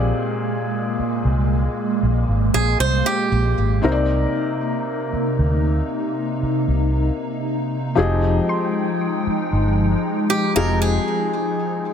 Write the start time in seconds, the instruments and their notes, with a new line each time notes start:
Already playing: fingered electric bass A#1, felt piano A#2 A#3 C4 G4 G#4 D5 D#5, analog synth pad G#3 A#3, synth pluck G6
0.99 muted fingered electric bass stroke
1.25 fingered electric bass C2
2.03 fingered electric bass A#1
2.28 fingered electric bass G#1
2.54 fingered electric bass A#1, steel-string acoustic guitar G#4
2.80 fingered electric bass C2, steel-string acoustic guitar C5, synth pluck G6
3.06 steel-string acoustic guitar G4
3.32 fingered electric bass A#1
3.58 fingered electric bass G#1
3.82 fingered electric bass C2, felt piano C3 C4 D#4 A#4 C5, analog synth pad C3 D#4
3.92 felt piano D5
5.13 muted fingered electric bass stroke
5.39 fingered electric bass D2
6.42 muted fingered electric bass stroke
6.68 fingered electric bass C2
7.95 fingered electric bass F1, felt piano F3 C4 G4 G#4 D#5, analog synth pad F3 G#3 G5
8.49 synth pluck C6
9.27 muted fingered electric bass stroke
9.53 fingered electric bass G1
10.30 steel-string acoustic guitar G4
10.55 fingered electric bass F1, felt piano F3 C4 G4 G#4 D#5, steel-string acoustic guitar A#4
10.82 steel-string acoustic guitar G#4